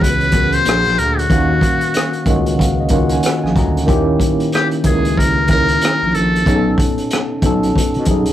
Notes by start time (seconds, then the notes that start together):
Already playing: C#2 E3 B3 C#4 F#4 G#4 C#5
0.01 B4, kick, closed hi-hat
0.20 closed hi-hat
0.32 E3 B3 C#4 F#4, kick, closed hi-hat
0.36 A#4
0.52 C5, closed hi-hat
0.64 A#1 A#2 A#3 D4 F#4 G#4, closed hi-hat
0.69 cross-stick
0.85 A#1, cross-stick, closed hi-hat
0.98 D2 A#4, closed hi-hat
1.19 F#4, closed hi-hat
1.29 D#2 D#3 A#3 C#4 F#4 F5, kick, closed hi-hat
1.61 kick, closed hi-hat
1.81 closed hi-hat
1.94 cross-stick, closed hi-hat
2.13 closed hi-hat
2.26 C#2 D#3 A#3 C#4 F4 D#5, kick, closed hi-hat
2.30 F#4
2.46 F#5, closed hi-hat
2.59 F5, kick, closed hi-hat
2.80 D#5
2.89 D#3 A#3 C#4 F4 F#5, kick, closed hi-hat
2.94 F#4
3.09 G#5, closed hi-hat
3.23 F#5, cross-stick, closed hi-hat
3.43 A#1 G#5, cross-stick
3.56 D2 A#5, kick, cross-stick, closed hi-hat
3.77 closed hi-hat
3.86 D#2 D#3 A#3 C#4 E4 G4, kick, closed hi-hat
4.20 kick, closed hi-hat
4.40 closed hi-hat
4.52 G4, cross-stick, closed hi-hat
4.71 closed hi-hat
4.84 C#2 D#3 A#3 C#4 E4 G#4 A#4, kick, closed hi-hat
5.05 closed hi-hat
5.17 A#4, kick, closed hi-hat
5.48 D#3 A#3 C#4 E4 A#4, kick, closed hi-hat
5.53 A#4
5.68 closed hi-hat
5.82 cross-stick, closed hi-hat
6.02 A#1
6.15 A#1 A4, closed hi-hat
6.36 closed hi-hat
6.45 B1 B2 B3 C#4 D#4 G#4, kick, closed hi-hat
6.55 A4
6.78 kick, closed hi-hat
6.98 closed hi-hat
7.11 cross-stick, closed hi-hat
7.42 B1 B2 B3 C#4 D#4 A4, kick, closed hi-hat
7.63 closed hi-hat
7.76 kick, closed hi-hat
7.94 B2, closed hi-hat
8.05 B1 B2 B3 C#4, kick, closed hi-hat
8.10 D#4 G#4
8.26 C#2, closed hi-hat